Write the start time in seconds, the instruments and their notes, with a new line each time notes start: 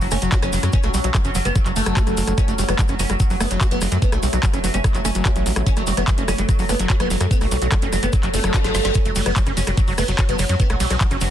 Already playing: synth drone F#3 C#4
0.01 analog synth bass F#1, acid bass F#3, oud F#3, open hi-hat, cabasa
0.11 analog synth bass F#1, acid bass A3, oud C#4, cross-stick, open hi-hat, cabasa
0.22 analog synth bass F#1, acid bass F#3, oud F#3, closed hi-hat, cabasa
0.32 oud F#3, acid bass F#4, kick, clap, closed hi-hat, cabasa
0.42 analog synth bass F#1, acid bass F#3, oud C#4, cross-stick, closed hi-hat, cabasa
0.53 analog synth bass F#1, acid bass F#3, oud F#3, open hi-hat, cabasa
0.63 analog synth bass F#2, acid bass F#3, oud F#3, cross-stick, closed hi-hat, cabasa
0.73 acid bass F#3, oud C#4, kick, closed hi-hat, cabasa
0.83 analog synth bass B1, oud F#3, acid bass A3, cross-stick, closed hi-hat, cabasa
0.94 analog synth bass B1, oud F#3, acid bass G3, open hi-hat, cabasa
1.04 analog synth bass B1, acid bass F#3, oud F#3, closed hi-hat, cabasa
1.14 acid bass F#3, kick, cross-stick, clap, closed hi-hat, cabasa
1.24 analog synth bass F#1, oud F#3, acid bass C#4, closed hi-hat, cabasa
1.35 analog synth bass F#1, acid bass F#3, oud F#3, open hi-hat, cabasa
1.45 analog synth bass F#1, acid bass G3, oud B3, closed hi-hat, cabasa
1.56 acid bass F#3, oud F#3, kick, cross-stick, closed hi-hat, cabasa
1.66 analog synth bass F#1, acid bass F#3, oud F#3, clap, closed hi-hat, cabasa
1.76 analog synth bass F#1, acid bass A3, oud A3, open hi-hat, cabasa
1.86 analog synth bass F#1, acid bass F#3, cross-stick, closed hi-hat, cabasa
1.97 acid bass F#4, kick, clap, closed hi-hat, cabasa
2.07 analog synth bass F#1, acid bass F#3, cross-stick, closed hi-hat, cabasa
2.17 analog synth bass F#1, acid bass F#3, open hi-hat, cabasa
2.27 analog synth bass F#1, acid bass F#3, cross-stick, closed hi-hat, cabasa
2.38 acid bass F#3, synth drone A3, oud C#4, kick, cross-stick, closed hi-hat, cabasa
2.48 analog synth bass F#1, oud F#3, acid bass A3, closed hi-hat, cabasa
2.58 analog synth bass F#1, oud F#3, acid bass G3, open hi-hat, cabasa
2.69 analog synth bass F#1, acid bass F#3, oud B3, cross-stick, closed hi-hat, cabasa
2.79 oud F#3, acid bass F#3, kick, clap, closed hi-hat, cabasa
2.88 analog synth bass F#1, oud F#3, acid bass C#4, cross-stick, closed hi-hat, cabasa
2.99 analog synth bass F#1, acid bass F#3, oud C#4, open hi-hat, cabasa
3.10 analog synth bass F#1, oud F#3, acid bass G3, cross-stick, closed hi-hat, cabasa
3.20 acid bass F#3, oud F#3, kick, closed hi-hat, cabasa
3.30 analog synth bass F#1, oud F#3, acid bass F#3, open hi-hat, cabasa
3.40 analog synth bass F#1, acid bass A3, oud B3, cross-stick, open hi-hat, cabasa
3.51 analog synth bass F#1, acid bass F#3, oud F#3, closed hi-hat, cabasa
3.61 oud F#3, acid bass F#4, kick, cross-stick, clap, closed hi-hat, cabasa
3.71 analog synth bass F#1, acid bass F#3, oud B3, closed hi-hat, cabasa
3.81 analog synth bass F#1, acid bass F#3, oud F#3, cross-stick, open hi-hat, cabasa
3.92 analog synth bass F#2, acid bass F#3, oud F#3, closed hi-hat, cabasa
4.02 acid bass F#3, oud B3, kick, closed hi-hat, cabasa
4.12 analog synth bass B1, oud F#3, acid bass A3, cross-stick, closed hi-hat, cabasa
4.23 analog synth bass B1, oud F#3, acid bass G3, open hi-hat, cabasa
4.33 analog synth bass B1, acid bass F#3, oud F#3, cross-stick, closed hi-hat, cabasa
4.43 acid bass F#3, kick, clap, closed hi-hat, cabasa
4.53 analog synth bass F#1, oud F#3, acid bass C#4, cross-stick, closed hi-hat, cabasa
4.64 analog synth bass F#1, acid bass F#3, oud F#3, wobble bass B3, open hi-hat, cabasa
4.74 analog synth bass F#1, acid bass G3, oud C#4, closed hi-hat, cabasa
4.84 acid bass F#3, oud F#3, kick, cross-stick, closed hi-hat, cabasa
4.95 analog synth bass F#1, acid bass F#3, oud F#3, clap, closed hi-hat, cabasa
5.05 analog synth bass F#1, acid bass A3, oud C#4, cross-stick, open hi-hat, cabasa
5.15 analog synth bass F#1, acid bass F#3, closed hi-hat, cabasa
5.25 acid bass F#4, kick, cross-stick, clap, closed hi-hat, cabasa
5.36 analog synth bass A1, acid bass F#3, closed hi-hat, cabasa
5.46 analog synth bass A1, acid bass F#3, open hi-hat, cabasa
5.56 analog synth bass A1, acid bass F#3, cross-stick, closed hi-hat, cabasa
5.66 acid bass F#3, oud C#4, kick, closed hi-hat, cabasa
5.76 analog synth bass F#1, oud F#3, acid bass A3, cross-stick, closed hi-hat, cabasa
5.87 analog synth bass F#1, oud F#3, acid bass G3, open hi-hat, cabasa
5.97 analog synth bass F#1, acid bass F#3, oud B3, cross-stick, closed hi-hat, cabasa
6.08 acid bass F#3, kick, clap, closed hi-hat, cabasa
6.18 analog synth bass F#1, oud F#3, acid bass C#4, closed hi-hat, cabasa
6.28 analog synth bass F#1, acid bass F#3, oud C#4, cross-stick, open hi-hat, cabasa
6.38 analog synth bass F#1, oud F#3, acid bass G3, closed hi-hat, cabasa
6.49 acid bass F#3, oud F#3, kick, cross-stick, closed hi-hat, cabasa
6.59 analog synth bass F#1, acid bass F#3, oud F#3, open hi-hat, cabasa
6.69 analog synth bass F#1, acid bass A3, oud B3, cross-stick, open hi-hat, cabasa
6.79 analog synth bass F#1, acid bass F#3, oud F#3, closed hi-hat, cabasa
6.90 oud F#3, acid bass F#4, kick, clap, closed hi-hat, cabasa
7.00 analog synth bass F#1, acid bass F#3, oud B3, cross-stick, closed hi-hat, cabasa
7.10 analog synth bass F#1, oud F#3, acid bass F#3, open hi-hat, cabasa
7.21 analog synth bass F#2, oud F#3, acid bass F#3, cross-stick, closed hi-hat, cabasa
7.31 acid bass F#3, oud B3, kick, closed hi-hat, cabasa
7.41 analog synth bass B1, oud F#3, acid bass A3, cross-stick, open hi-hat, cabasa
7.51 analog synth bass B1, oud F#3, acid bass G3, open hi-hat, cabasa
7.62 analog synth bass B1, oud F#3, acid bass F#3, closed hi-hat, cabasa
7.71 acid bass F#3, kick, cross-stick, clap, closed hi-hat, cabasa
7.82 analog synth bass F#1, oud F#3, acid bass C#4, closed hi-hat, cabasa
7.92 analog synth bass F#1, acid bass F#3, oud F#3, cross-stick, open hi-hat, cabasa
8.03 analog synth bass F#1, acid bass G3, oud B3, closed hi-hat, cabasa
8.13 oud F#3, acid bass F#3, kick, cross-stick, closed hi-hat, reverse cymbal, cabasa
8.23 analog synth bass F#1, oud F#3, acid bass F#3, clap, closed hi-hat, cabasa
8.34 analog synth bass F#1, oud A3, acid bass A3, open hi-hat, zap, cabasa
8.44 analog synth bass F#1, acid bass F#3, cross-stick, closed hi-hat, cabasa
8.54 acid bass F#4, kick, snare, clap, closed hi-hat, cabasa
8.64 analog synth bass G1, acid bass F#3, snare, closed hi-hat, cabasa
8.75 analog synth bass G1, acid bass F#3, snare, open hi-hat, cabasa
8.84 analog synth bass G1, acid bass F#3, snare, closed hi-hat, cabasa
8.94 acid bass F#3, synth drone F#3 C#4, oud C#4, kick, cross-stick, closed hi-hat, cabasa
9.05 analog synth bass F#1, oud F#3, acid bass A3, closed hi-hat, cabasa
9.16 analog synth bass F#1, oud F#3, acid bass G3, open hi-hat, ride, cabasa
9.26 analog synth bass F#1, acid bass F#3, oud B3, cross-stick, closed hi-hat, cabasa
9.36 acid bass F#3, oud F#3, kick, clap, closed hi-hat, cabasa
9.46 analog synth bass F#1, oud F#3, acid bass C#4, cross-stick, closed hi-hat, cabasa
9.57 analog synth bass F#1, acid bass F#3, oud C#4, open hi-hat, ride, cabasa
9.67 analog synth bass F#1, oud F#3, acid bass G3, cross-stick, closed hi-hat, cabasa
9.77 acid bass F#3, oud F#3, kick, closed hi-hat, cabasa
9.87 analog synth bass F#1, acid bass F#3, oud F#3, open hi-hat, cabasa
9.98 analog synth bass F#1, acid bass A3, oud B3, cross-stick, open hi-hat, ride, cabasa
10.08 analog synth bass F#1, acid bass F#3, oud F#3, closed hi-hat, cabasa
10.18 acid bass F#4, kick, cross-stick, clap, closed hi-hat, cabasa
10.29 analog synth bass F#1, acid bass F#3, oud B3, closed hi-hat, cabasa
10.39 analog synth bass F#1, acid bass F#3, oud F#3, cross-stick, open hi-hat, ride, cabasa
10.49 analog synth bass F#2, acid bass F#3, oud F#3, closed hi-hat, cabasa
10.60 acid bass F#3, oud B3, kick, closed hi-hat, cabasa
10.69 analog synth bass B1, oud F#3, acid bass A3, cross-stick, closed hi-hat, cabasa
10.80 analog synth bass B1, oud F#3, acid bass G3, open hi-hat, ride, cabasa
10.90 analog synth bass B1, acid bass F#3, oud F#3, cross-stick, closed hi-hat, cabasa
11.01 acid bass F#3, kick, clap, closed hi-hat, cabasa
11.11 analog synth bass F#1, oud F#3, acid bass C#4, cross-stick, closed hi-hat, cabasa
11.21 analog synth bass F#1, acid bass F#3, oud F#3, wobble bass B3, open hi-hat, ride, cabasa